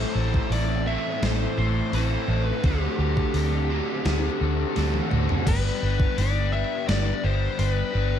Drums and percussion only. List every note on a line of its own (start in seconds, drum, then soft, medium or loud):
0.34 kick medium
0.52 snare soft
0.52 open hi-hat medium
1.23 snare loud
1.23 open hi-hat medium
1.93 open hi-hat medium
2.64 kick loud
2.64 open hi-hat medium
3.17 kick medium
3.34 open hi-hat medium
4.05 snare loud
4.05 open hi-hat medium
4.76 snare medium
4.76 open hi-hat medium
4.94 high tom medium
5.11 mid tom loud
5.29 floor tom medium
5.47 kick loud
5.47 open hi-hat medium
5.47 crash loud
6.00 kick medium
6.18 snare soft
6.18 open hi-hat medium
6.89 snare loud
6.89 open hi-hat medium
7.59 open hi-hat medium